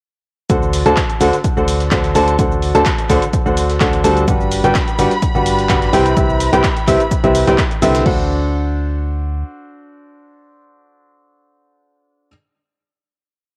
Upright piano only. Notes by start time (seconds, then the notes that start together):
0.50 D3 D4 F#4 A4 C5 F#5
0.86 D3 D4 F#4 A4 C5 A5
1.21 D3 D4 F#4 A4 C5 F#5
1.57 D3 D4 F#4 A4 C5 F#5
1.92 D3 D4 F#4 A4 C5 F#5
2.15 D3 D4 F#4 A4 C5 A5
2.39 D3 D4 F#4 A4 C5 F#5
2.75 D3 D4 F#4 A4 C5 A5
3.10 D3 D4 F#4 A4 C5 F#5
3.46 D3 D4 F#4 A4 C5 F#5
3.81 D3 D4 F#4 A4 C5 F#5
4.04 G3 D4 F#4 A4 C5 A5
4.28 G3 D4 F#4 G4 B4 F#5
4.64 G3 D4 F#4 G4 B4 G5
4.99 G3 D4 F#4 G4 B4 F#5
5.35 G3 D4 F#4 G4 B4 F#5
5.69 D4 F#4 G4 B4 F#5
5.93 C3 C4 E4 G4 B4 G5
6.17 C3 C4 E4 G4 B4 E5
6.53 C3 C4 E4 G4 B4 G5
6.88 C3 C4 E4 G4 B4 E5
7.24 C3 C4 E4 G4 B4 E5
7.47 C3 C4 E4 G4 B4 G5
7.82 D3 C4 E4 G4 B4 E5
8.06 D4 F#4 A4 C5 F#5